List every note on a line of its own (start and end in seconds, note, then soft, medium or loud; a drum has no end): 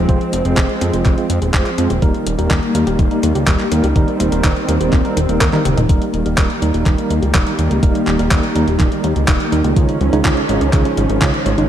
0.00 1.98 F3 medium
0.00 1.98 G#3 medium
0.00 1.98 C4 medium
0.09 0.19 F1 medium
0.09 0.18 F3 medium
0.09 0.42 G#3 medium
0.09 0.42 C4 medium
0.09 0.42 F4 medium
0.09 0.42 C5 loud
0.09 kick loud
0.09 closed hi-hat soft
0.21 closed hi-hat soft
0.33 0.43 F1 medium
0.33 0.42 C4 medium
0.33 closed hi-hat medium
0.45 0.55 F1 medium
0.45 0.79 G#3 medium
0.45 0.79 C4 medium
0.45 0.79 F4 medium
0.45 0.57 G#4 medium
0.45 0.79 C5 loud
0.45 closed hi-hat medium
0.57 0.67 F1 loud
0.57 0.67 F3 medium
0.57 kick loud
0.57 clap loud
0.57 closed hi-hat medium
0.69 closed hi-hat soft
0.81 0.91 F2 medium
0.81 1.15 G#3 medium
0.81 0.91 C4 medium
0.81 1.15 C4 medium
0.81 1.15 F4 medium
0.81 1.15 C5 medium
0.81 closed hi-hat medium
0.93 1.03 F1 medium
0.93 1.05 G#4 medium
0.93 closed hi-hat soft
1.06 1.15 F1 loud
1.06 1.15 F3 medium
1.06 kick loud
1.06 clap soft
1.06 closed hi-hat medium
1.18 1.34 G#3 medium
1.18 1.34 C4 medium
1.18 1.34 F4 medium
1.18 1.34 C5 medium
1.18 closed hi-hat soft
1.30 1.40 F2 medium
1.30 1.39 C4 medium
1.30 closed hi-hat medium
1.42 1.52 D#1 medium
1.42 1.53 G#4 medium
1.42 closed hi-hat medium
1.54 1.64 F1 loud
1.54 1.63 F3 medium
1.54 1.70 G#3 medium
1.54 1.70 C4 medium
1.54 1.70 F4 medium
1.54 1.70 C5 medium
1.54 kick loud
1.54 clap loud
1.54 closed hi-hat soft
1.66 clap soft
1.66 closed hi-hat soft
1.78 1.88 F2 loud
1.78 1.99 G#3 medium
1.78 1.88 C4 medium
1.78 1.99 C4 medium
1.78 1.99 F4 medium
1.78 1.99 C5 loud
1.78 closed hi-hat medium
1.90 2.00 D#1 medium
1.90 2.02 G#4 medium
1.90 closed hi-hat soft
2.02 2.12 D#1 medium
2.02 5.86 D#3 medium
2.02 2.12 D#3 medium
2.02 5.85 G3 medium
2.02 2.36 G3 medium
2.02 3.94 A#3 medium
2.02 2.36 A#3 medium
2.02 2.36 D#4 medium
2.02 2.36 A#4 loud
2.02 kick loud
2.02 closed hi-hat medium
2.14 closed hi-hat soft
2.26 2.36 D#1 medium
2.26 2.36 A#3 medium
2.26 closed hi-hat medium
2.39 2.49 D#1 medium
2.39 2.72 G3 medium
2.39 2.72 A#3 medium
2.39 2.72 D#4 medium
2.39 2.50 G4 medium
2.39 2.72 A#4 loud
2.39 closed hi-hat medium
2.51 2.61 D#1 loud
2.51 2.60 D#3 medium
2.51 kick loud
2.51 clap loud
2.51 closed hi-hat medium
2.63 closed hi-hat soft
2.75 2.85 D#2 medium
2.75 3.08 G3 medium
2.75 2.84 A#3 medium
2.75 3.08 A#3 medium
2.75 3.08 D#4 medium
2.75 3.08 A#4 medium
2.75 closed hi-hat loud
2.87 2.97 D#1 medium
2.87 2.98 G4 medium
2.87 closed hi-hat medium
2.99 3.09 D#1 loud
2.99 3.09 D#3 medium
2.99 kick loud
2.99 closed hi-hat medium
3.11 3.27 G3 medium
3.11 3.27 A#3 medium
3.11 3.27 D#4 medium
3.11 3.27 A#4 medium
3.11 closed hi-hat soft
3.23 3.33 D#2 loud
3.23 3.33 A#3 medium
3.23 closed hi-hat medium
3.35 3.45 C#2 medium
3.35 3.47 G4 medium
3.35 closed hi-hat medium
3.47 3.57 D#1 loud
3.47 3.57 D#3 medium
3.47 3.63 G3 medium
3.47 3.63 A#3 medium
3.47 3.63 D#4 medium
3.47 3.63 A#4 medium
3.47 kick loud
3.47 clap loud
3.47 closed hi-hat medium
3.60 clap soft
3.60 closed hi-hat soft
3.72 3.82 D#2 medium
3.72 3.93 G3 medium
3.72 3.81 A#3 medium
3.72 3.93 A#3 medium
3.72 3.93 D#4 medium
3.72 3.93 A#4 loud
3.72 closed hi-hat medium
3.84 3.94 C#2 medium
3.84 3.95 G4 medium
3.84 closed hi-hat medium
3.96 4.06 D#1 medium
3.96 4.05 D#3 medium
3.96 4.29 G3 medium
3.96 4.29 A#3 medium
3.96 5.87 C4 medium
3.96 4.29 D#4 medium
3.96 4.29 A#4 loud
3.96 kick loud
3.96 closed hi-hat medium
4.08 closed hi-hat soft
4.20 4.30 D#1 medium
4.20 4.29 A#3 medium
4.20 closed hi-hat loud
4.32 4.42 D#1 medium
4.32 4.66 G3 medium
4.32 4.66 A#3 medium
4.32 4.66 D#4 medium
4.32 4.44 G4 medium
4.32 4.66 A#4 loud
4.32 closed hi-hat medium
4.44 4.54 D#1 loud
4.44 4.54 D#3 medium
4.44 kick loud
4.44 clap loud
4.44 closed hi-hat medium
4.56 closed hi-hat soft
4.68 4.78 D#2 medium
4.68 5.02 G3 medium
4.68 4.78 A#3 medium
4.68 5.02 A#3 medium
4.68 5.02 D#4 medium
4.68 5.02 A#4 medium
4.68 closed hi-hat medium
4.81 4.91 D#1 medium
4.81 4.92 G4 medium
4.81 closed hi-hat medium
4.93 5.03 D#1 loud
4.93 5.02 D#3 medium
4.93 kick loud
4.93 clap medium
4.93 closed hi-hat medium
5.05 5.21 G3 medium
5.05 5.21 A#3 medium
5.05 5.21 D#4 medium
5.05 5.21 A#4 medium
5.05 closed hi-hat soft
5.17 5.27 D#1 medium
5.17 5.26 D#3 medium
5.17 closed hi-hat loud
5.29 5.39 D#1 medium
5.29 5.50 G3 medium
5.29 5.38 A#3 medium
5.29 5.50 A#3 medium
5.29 5.50 D#4 medium
5.29 5.50 A#4 medium
5.29 closed hi-hat medium
5.41 5.51 D#2 loud
5.41 5.53 A#4 loud
5.41 kick loud
5.41 clap loud
5.41 closed hi-hat medium
5.41 high tom medium
5.53 5.63 D#3 loud
5.53 5.79 G3 loud
5.53 5.79 A#3 medium
5.53 5.79 D#4 medium
5.53 5.79 A#4 loud
5.53 clap soft
5.53 closed hi-hat soft
5.53 high tom medium
5.65 5.75 D#1 loud
5.65 5.77 G4 medium
5.65 closed hi-hat medium
5.65 mid tom medium
5.77 5.87 D#1 medium
5.77 5.87 D#4 medium
5.77 closed hi-hat medium
5.77 mid tom medium
5.89 5.99 D#1 medium
5.89 11.69 D#3 medium
5.89 5.99 D#3 medium
5.89 9.73 G3 medium
5.89 6.23 G3 medium
5.89 9.73 A#3 medium
5.89 6.23 A#3 medium
5.89 6.23 D#4 medium
5.89 6.23 A#4 medium
5.89 kick loud
5.89 closed hi-hat loud
6.02 closed hi-hat soft
6.14 6.24 D#1 medium
6.14 6.23 A#3 medium
6.14 closed hi-hat soft
6.26 6.36 D#1 medium
6.26 6.59 G3 medium
6.26 6.59 A#3 medium
6.26 6.59 D#4 medium
6.26 6.37 G4 medium
6.26 6.59 A#4 medium
6.26 closed hi-hat soft
6.38 6.48 D#1 medium
6.38 6.47 D#3 medium
6.38 kick loud
6.38 clap loud
6.38 closed hi-hat medium
6.50 closed hi-hat soft
6.62 6.72 D#2 medium
6.62 6.95 G3 medium
6.62 6.71 A#3 medium
6.62 6.95 A#3 medium
6.62 6.95 D#4 medium
6.62 6.95 A#4 medium
6.62 closed hi-hat medium
6.74 6.84 D#1 medium
6.74 6.86 G4 medium
6.74 closed hi-hat soft
6.86 6.96 D#1 loud
6.86 6.96 D#3 medium
6.86 kick loud
6.86 clap medium
6.86 closed hi-hat medium
6.98 7.14 G3 medium
6.98 7.14 A#3 medium
6.98 7.14 D#4 medium
6.98 7.14 A#4 medium
6.98 closed hi-hat soft
7.10 7.20 D#2 medium
7.10 7.20 A#3 medium
7.10 closed hi-hat medium
7.22 7.32 C#2 medium
7.22 7.34 G4 medium
7.22 closed hi-hat soft
7.34 7.44 D#1 loud
7.34 7.44 D#3 medium
7.34 7.50 G3 medium
7.34 7.50 A#3 medium
7.34 7.50 D#4 medium
7.34 7.50 A#4 medium
7.34 kick loud
7.34 clap loud
7.34 closed hi-hat medium
7.47 closed hi-hat soft
7.59 7.69 D#2 loud
7.59 7.80 G3 medium
7.59 7.68 A#3 medium
7.59 7.80 A#3 medium
7.59 7.80 D#4 medium
7.59 7.80 A#4 loud
7.59 closed hi-hat medium
7.71 7.81 C#2 medium
7.71 7.82 G4 medium
7.71 closed hi-hat soft
7.83 7.93 D#1 loud
7.83 7.92 D#3 medium
7.83 8.16 G3 medium
7.83 8.16 A#3 medium
7.83 8.16 D#4 medium
7.83 8.16 A#4 loud
7.83 kick loud
7.83 closed hi-hat medium
7.95 closed hi-hat soft
8.07 8.17 D#1 medium
8.07 8.17 A#3 medium
8.07 clap medium
8.07 closed hi-hat soft
8.19 8.29 D#1 medium
8.19 8.53 G3 medium
8.19 8.53 A#3 medium
8.19 8.53 D#4 medium
8.19 8.31 G4 medium
8.19 8.53 A#4 medium
8.19 closed hi-hat soft
8.31 8.41 D#1 loud
8.31 8.41 D#3 medium
8.31 kick loud
8.31 clap loud
8.31 closed hi-hat medium
8.44 closed hi-hat soft
8.56 8.65 D#2 medium
8.56 8.89 G3 medium
8.56 8.65 A#3 medium
8.56 8.89 A#3 medium
8.56 8.89 D#4 medium
8.56 8.89 A#4 medium
8.56 closed hi-hat medium
8.68 8.78 D#1 medium
8.68 8.79 G4 medium
8.68 closed hi-hat soft
8.80 8.90 D#1 loud
8.80 8.89 D#3 medium
8.80 kick loud
8.80 clap medium
8.80 closed hi-hat medium
8.92 9.08 G3 medium
8.92 9.08 A#3 medium
8.92 9.08 D#4 medium
8.92 9.08 A#4 medium
8.92 closed hi-hat soft
9.04 9.14 D#2 medium
9.04 9.13 A#3 medium
9.04 closed hi-hat medium
9.16 9.26 C#2 medium
9.16 9.28 G4 medium
9.16 closed hi-hat soft
9.28 9.38 D#1 loud
9.28 9.38 D#3 medium
9.28 9.44 G3 medium
9.28 9.44 A#3 medium
9.28 9.44 D#4 medium
9.28 9.44 A#4 medium
9.28 kick loud
9.28 clap loud
9.28 closed hi-hat medium
9.40 closed hi-hat soft
9.52 9.62 D#2 loud
9.52 9.74 G3 medium
9.52 9.74 A#3 medium
9.52 9.62 A#3 medium
9.52 9.74 D#4 medium
9.52 9.74 A#4 loud
9.52 closed hi-hat medium
9.64 9.74 C#2 medium
9.64 9.76 G4 medium
9.64 closed hi-hat soft
9.76 9.86 C#2 medium
9.76 10.10 C#3 medium
9.76 9.86 D#3 medium
9.76 11.69 F3 medium
9.76 10.10 G#3 medium
9.76 11.68 C#4 medium
9.76 10.10 D#4 medium
9.76 10.10 F4 medium
9.76 10.10 C#5 loud
9.76 kick loud
9.76 closed hi-hat medium
9.89 closed hi-hat soft
10.01 10.11 C#2 medium
10.01 10.10 G#3 medium
10.01 closed hi-hat soft
10.13 10.23 C#2 medium
10.13 10.46 C#3 medium
10.13 10.46 G#3 medium
10.13 10.46 D#4 medium
10.13 10.24 D#4 medium
10.13 10.46 F4 medium
10.13 10.46 C#5 medium
10.13 closed hi-hat soft
10.25 10.35 C#2 loud
10.25 10.34 D#3 medium
10.25 kick loud
10.25 clap loud
10.25 closed hi-hat medium
10.37 closed hi-hat soft
10.49 10.59 G#1 medium
10.49 10.82 C#3 medium
10.49 10.59 G#3 medium
10.49 10.82 G#3 medium
10.49 10.82 D#4 medium
10.49 10.82 F4 medium
10.49 10.82 C#5 medium
10.49 closed hi-hat medium
10.61 10.71 C#2 medium
10.61 10.73 D#4 medium
10.61 closed hi-hat soft
10.73 10.83 C#2 loud
10.73 10.83 D#3 medium
10.73 kick loud
10.73 clap medium
10.73 closed hi-hat medium
10.85 11.01 C#3 medium
10.85 11.01 G#3 medium
10.85 11.01 D#4 medium
10.85 11.01 F4 medium
10.85 11.01 C#5 medium
10.85 closed hi-hat soft
10.97 11.07 G#1 medium
10.97 11.07 G#3 medium
10.97 closed hi-hat medium
11.10 11.19 G#1 medium
11.10 11.21 D#4 medium
11.10 closed hi-hat soft
11.22 11.32 C#2 loud
11.22 11.38 C#3 medium
11.22 11.31 D#3 medium
11.22 11.38 G#3 medium
11.22 11.38 D#4 medium
11.22 11.38 F4 medium
11.22 11.38 C#5 loud
11.22 kick loud
11.22 clap loud
11.22 closed hi-hat medium
11.34 closed hi-hat soft
11.46 11.56 G#1 loud
11.46 11.67 C#3 medium
11.46 11.67 G#3 medium
11.46 11.55 G#3 medium
11.46 11.67 D#4 medium
11.46 11.67 F4 medium
11.46 11.67 C#5 loud
11.46 closed hi-hat medium
11.58 11.68 G#1 medium
11.58 11.69 D#4 medium
11.58 closed hi-hat soft